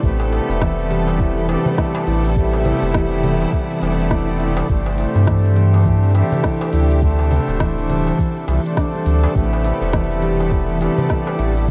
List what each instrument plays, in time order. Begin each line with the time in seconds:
Already playing: string section C3 D4 A4, harp E4
0.01 sub bass A1, harmonium C3 G3 A3 B3 E4, harp A3, kick, cabasa
0.20 darbuka tek, cabasa
0.32 harp E4, open hi-hat, darbuka ka
0.49 sub bass E1, darbuka ka, cabasa
0.61 harp E3, kick, snare, cabasa
0.79 cabasa
0.86 string section G3
0.90 harp G3, open hi-hat
1.07 darbuka ka, cabasa
1.20 harp E3, kick, cabasa
1.37 cabasa
1.47 harmonium C3 G3 A3 B3, harp E4, open hi-hat, darbuka tek
1.51 harmonium D4
1.62 string section E4
1.66 darbuka dum, cabasa
1.78 harp E4, kick, snare, cabasa
1.95 darbuka ka, darbuka tek, cabasa
2.07 sub bass A1, harp E4, open hi-hat
2.25 cabasa
2.34 harmonium C3 G3 A3 B3, harp A3, kick, cabasa
2.38 harmonium E4
2.53 darbuka tek, cabasa
2.65 harp E4, open hi-hat, darbuka ka, darbuka dum
2.82 sub bass E1, darbuka ka, cabasa
2.94 harp E3, kick, snare, cabasa
3.12 cabasa
3.23 harp G3, open hi-hat, darbuka dum
3.41 darbuka ka, cabasa
3.53 harp E3, kick, cabasa
3.70 cabasa
3.80 sub bass E1, harmonium C3 G3 A3 B3 D4, harp E4, open hi-hat, darbuka ka, darbuka tek
3.99 cabasa
4.11 harp E4, kick, snare, cabasa
4.29 cabasa
4.40 harp E4, open hi-hat
4.57 darbuka ka, darbuka tek, cabasa
4.68 sub bass G1, harmonium D3 G3 A3 C4, harp A3, kick, cabasa
4.86 darbuka tek, cabasa
4.98 harp E4, open hi-hat, darbuka ka
5.15 sub bass G2, darbuka ka, cabasa
5.27 harp E3, kick, snare, cabasa
5.44 string section D4, cabasa
5.56 harp G3, open hi-hat
5.74 string section G4, darbuka ka, cabasa
5.86 harp E3, kick, cabasa
6.03 cabasa
6.13 harmonium D3 G3 A3 C4 E4, harp E4, open hi-hat, darbuka tek
6.32 darbuka dum, cabasa
6.44 harp E4, kick, snare, cabasa
6.61 darbuka ka, darbuka tek, cabasa
6.73 sub bass D2, harp E4, open hi-hat
6.90 cabasa
7.00 harmonium D3 A3 C4 E4, harp A3, kick, cabasa
7.19 darbuka tek, cabasa
7.31 harp E4, open hi-hat, darbuka ka, darbuka dum
7.48 sub bass D1, darbuka ka, cabasa
7.60 harp E3, kick, snare, cabasa
7.78 cabasa
7.88 harp G3, string section A4, open hi-hat, darbuka dum
8.07 darbuka ka, cabasa
8.19 harp E3, kick, cabasa
8.37 cabasa
8.47 sub bass C2, harmonium D3 F3 A3 C4 E4, harp G4, open hi-hat, darbuka ka, darbuka tek
8.63 harmonium D3 A3 C4 D4, cabasa
8.77 harp D4, kick, snare, cabasa
8.94 harp G3, cabasa
9.06 sub bass D2, harp A3, open hi-hat
9.24 darbuka ka, darbuka tek, cabasa
9.33 sub bass A1, harmonium C3 G3 A3 B3 E4, harp A3, kick, cabasa
9.53 darbuka tek, cabasa
9.65 harp E4, open hi-hat, darbuka ka
9.82 sub bass E1, darbuka ka, cabasa
9.93 harp E3, kick, snare, cabasa
10.10 string section G3, cabasa
10.22 harp G3, open hi-hat
10.40 darbuka ka, cabasa
10.52 harp E3, kick, cabasa
10.65 string section E4
10.69 cabasa
10.79 harmonium C3 G3 A3 B3, harp E4, open hi-hat, darbuka tek
10.83 harmonium D4
10.98 darbuka dum, cabasa
11.10 harp E4, kick, snare, cabasa
11.27 darbuka ka, darbuka tek, cabasa
11.39 sub bass A1, harp E4, open hi-hat
11.56 cabasa
11.66 harmonium C3 G3